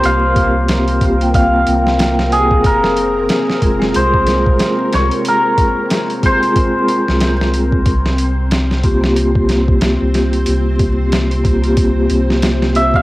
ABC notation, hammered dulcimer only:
X:1
M:4/4
L:1/16
Q:"Swing 16ths" 1/4=92
K:Fm
V:1 name="Hammered dulcimer"
f8 f6 A2 | B6 z2 c6 d2 | B4 z2 c8 z2 | z16 |
z12 z2 =e f |]